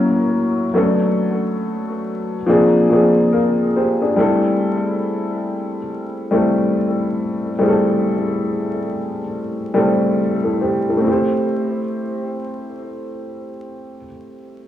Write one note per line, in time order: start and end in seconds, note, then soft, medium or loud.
0.00 0.74 F#3 medium
0.00 0.77 A#3 medium
0.00 0.76 C#4 medium
0.00 0.77 E4 medium
0.00 0.77 A#4 loud
0.74 2.33 F#3 medium
0.74 2.34 A3 medium
0.74 2.35 B3 medium
0.74 0.83 C#4 medium
0.74 2.35 A4 medium
0.83 2.38 D4 medium
2.46 2.86 F3 medium
2.46 2.87 A#3 medium
2.46 2.87 C4 medium
2.46 2.88 D4 medium
2.46 2.88 G#4 loud
2.89 4.09 F3 medium
2.89 4.09 A#3 medium
2.89 4.10 C4 medium
2.89 3.33 D4 medium
2.89 3.34 G#4 medium
3.33 3.73 F4 medium
3.33 3.73 A#4 medium
3.76 4.00 G4 medium
3.76 4.00 C5 medium
4.02 4.42 D4 medium
4.02 4.42 G#4 medium
4.16 5.76 G3 medium
4.16 5.77 A3 medium
4.16 5.77 C4 medium
4.16 5.78 E4 medium
4.16 5.78 A4 medium
6.31 7.51 G3 medium
6.31 7.51 A3 medium
6.31 7.52 C4 medium
6.31 7.52 E4 medium
6.31 7.53 A4 medium
7.59 9.19 G3 medium
7.59 9.19 A3 medium
7.59 9.20 C4 medium
7.59 9.20 E4 medium
7.59 7.69 G#4 medium
7.69 9.24 A4 medium
9.74 10.94 G3 medium
9.74 10.94 A3 medium
9.74 10.95 C4 medium
9.74 10.19 E4 medium
9.74 10.19 A4 medium
10.43 10.60 E4 soft
10.43 10.60 A4 medium
10.61 10.85 G4 medium
10.61 10.85 C5 medium
10.88 11.03 E4 soft
10.88 11.28 A4 medium
10.97 13.95 A3 medium
10.97 13.99 C4 medium
11.04 14.03 E4 medium
11.04 14.06 G4 medium
11.11 14.10 C5 medium